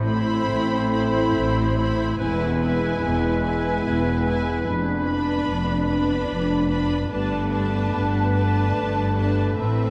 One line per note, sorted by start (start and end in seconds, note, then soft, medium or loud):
0.00 0.41 A1 medium
0.00 0.41 A2 medium
0.00 2.16 A3 medium
0.00 2.16 C4 medium
0.00 4.63 E4 medium
0.00 2.16 C5 medium
0.00 2.16 B5 medium
0.08 0.92 E4 medium
0.08 0.91 C5 medium
0.08 0.92 B5 medium
0.51 1.26 A1 medium
0.51 1.26 A2 medium
0.93 1.76 E4 medium
0.93 1.75 C5 medium
0.93 1.76 B5 medium
1.35 2.10 A1 medium
1.35 2.10 A2 medium
1.77 2.19 E4 medium
1.77 2.19 C5 medium
1.77 2.19 B5 medium
2.19 2.93 E1 medium
2.19 2.94 E2 medium
2.19 4.63 G#3 medium
2.19 4.63 B3 medium
2.19 2.61 E4 medium
2.19 6.79 B4 medium
2.19 2.61 B4 medium
2.19 2.60 G#5 medium
2.19 4.62 G#5 medium
2.62 3.43 E4 medium
2.62 3.43 B4 medium
2.62 3.43 G#5 medium
3.03 3.75 E1 medium
3.03 3.76 E2 medium
3.44 4.24 E4 medium
3.44 4.24 B4 medium
3.44 4.24 G#5 medium
3.85 4.57 E1 medium
3.85 4.57 E2 medium
4.25 4.66 E4 medium
4.25 4.66 B4 medium
4.25 4.65 G#5 medium
4.66 5.38 F1 medium
4.66 5.38 F2 medium
4.66 7.07 B3 medium
4.66 9.27 D4 medium
4.66 7.07 D4 medium
4.66 6.80 B5 medium
5.06 5.87 D4 medium
5.06 5.87 B4 medium
5.06 5.86 B5 medium
5.47 6.19 F1 medium
5.47 6.20 F2 medium
5.88 6.68 D4 medium
5.88 6.69 B4 medium
5.88 6.68 B5 medium
6.29 7.01 F1 medium
6.29 7.01 F2 medium
6.70 7.09 D4 medium
6.70 7.10 B4 medium
6.70 7.10 B5 medium
7.10 7.83 G1 medium
7.10 7.83 G2 medium
7.10 9.90 A3 medium
7.10 9.41 B3 medium
7.10 7.50 D4 medium
7.10 7.51 B4 medium
7.10 9.55 B4 medium
7.10 9.61 A5 medium
7.10 7.51 A5 medium
7.51 8.32 D4 medium
7.51 8.33 B4 medium
7.51 8.33 A5 medium
7.93 8.66 G1 medium
7.93 8.66 G2 medium
8.34 9.15 D4 medium
8.34 9.16 B4 medium
8.34 9.16 A5 medium
8.76 9.49 G1 medium
8.76 9.49 G2 medium
9.17 9.57 D4 medium
9.17 9.58 B4 medium
9.17 9.58 A5 medium
9.58 9.90 A1 medium
9.58 9.90 A2 medium
9.58 9.90 C4 medium
9.58 9.90 B4 medium
9.58 9.90 E5 medium
9.58 9.90 B5 medium